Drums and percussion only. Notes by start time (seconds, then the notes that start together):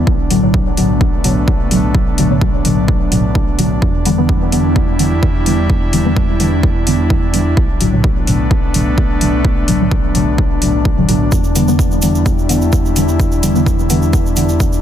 0.07 kick
0.31 open hi-hat
0.54 kick
0.77 open hi-hat
1.01 kick
1.24 open hi-hat
1.48 kick
1.71 open hi-hat
1.95 kick
2.18 open hi-hat
2.41 kick
2.65 open hi-hat
2.88 kick
3.12 open hi-hat
3.35 kick
3.59 open hi-hat
3.82 kick
4.05 open hi-hat
4.29 kick
4.52 open hi-hat
4.76 kick
4.99 open hi-hat
5.23 kick
5.46 open hi-hat
5.70 kick
5.93 open hi-hat
6.16 kick
6.40 open hi-hat
6.63 kick
6.87 open hi-hat
7.10 kick
7.34 open hi-hat
7.57 kick
7.81 open hi-hat
8.04 kick
8.27 open hi-hat
8.51 kick
8.74 open hi-hat
8.98 kick
9.21 open hi-hat
9.45 kick
9.68 open hi-hat
9.91 kick
10.15 open hi-hat
10.38 kick
10.62 open hi-hat
10.85 kick
11.09 open hi-hat
11.32 kick, shaker
11.44 shaker
11.56 open hi-hat, shaker
11.68 shaker
11.79 kick, shaker
11.91 shaker
12.02 open hi-hat, shaker
12.15 shaker
12.26 kick, shaker
12.39 shaker
12.49 open hi-hat, shaker
12.62 shaker
12.72 kick, shaker
12.86 shaker
12.96 open hi-hat, shaker
13.08 shaker
13.20 kick, shaker
13.32 shaker
13.43 open hi-hat, shaker
13.55 shaker
13.66 kick, shaker
13.79 shaker
13.90 open hi-hat, shaker
14.02 shaker
14.13 kick, shaker
14.26 shaker
14.36 open hi-hat, shaker
14.49 shaker
14.60 kick, shaker
14.73 shaker